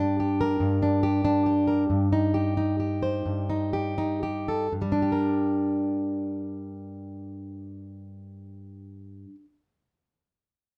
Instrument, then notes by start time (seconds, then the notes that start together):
steel-string acoustic guitar
Already playing: G2 G4
0.00 D4
0.20 G4
0.41 A#4
0.60 G2
0.82 D4
1.03 G4
1.25 D4
1.46 G4
1.68 A#4
1.90 G2
2.13 D#4
2.34 G4
2.57 D#4
2.80 G4
3.03 C5
3.26 G2
3.50 D#4
3.73 G4
3.98 D#4
4.23 G4
4.48 A4
4.72 G2
4.82 G3
4.92 D4
5.02 G4
5.12 A#4